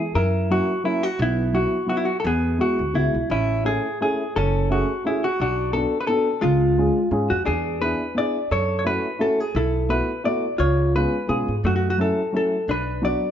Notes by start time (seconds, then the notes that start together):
Already playing: G#4
0.15 F#2 E4 A#4
0.50 F#3 A#3 C#4 E4 F#4
0.84 F#3 A#3 C#4 E4
1.03 F#4
1.19 B1 B3 E4
1.53 F#3 B3 E4 F#4
1.86 F#3 B3 E4 F#4
1.97 E4
2.05 F#4
2.20 A4
2.24 E2 B3 G#4
2.58 G#3 B3 E4 F#4
2.79 D2
2.93 C#2 G#3 B3 E4 F#4
3.14 B1
3.30 A1 C#4 E4
3.65 A3 C#4 E4 G#4
4.01 A3 C#4 E4 G#4
4.36 F#1 C#4 A4
4.70 A3 C#4 F#4 G#4
5.04 A3 C#4 E4 F#4 G#4
5.24 F#4
5.40 B1 D4 F#4
5.73 B3 D4 F#4 A4
6.01 B4
6.07 B3 D4 F#4 A4
6.41 C#2 G#3 F4
6.77 G#3 C#4 F4 G#4
7.11 G#2 G#3 C#4 F4 G#4
7.30 F2 F#4
7.45 E2 D4 G#4
7.81 B3 D4 E4 G#4 B4
8.15 B3 D4 E4 G#4 D5
8.51 F#2 A4 C#5
8.79 C#5
8.84 A3 C#4 E4 F#4 B4
9.19 A3 C#4 E4 F#4 A4
9.40 G#4
9.55 B1 E4 A4
9.89 A3 B3 E4 F#4 B4
10.24 A3 B3 E4 F#4 D5
10.58 C#2 F4 C#5
10.95 G#3 B3 C#4 F4 B4
11.27 B2 G#3 B3 C#4 F4 G#4
11.48 G#2
11.64 F#2 A3 F#4
11.76 F#4
11.90 F#4
11.98 F#3 A3 C#4 E4 A4
12.32 F#3 A3 C#4 E4
12.37 A4
12.68 B1 D4 B4
13.01 F#3 B3 D4 F#4 D5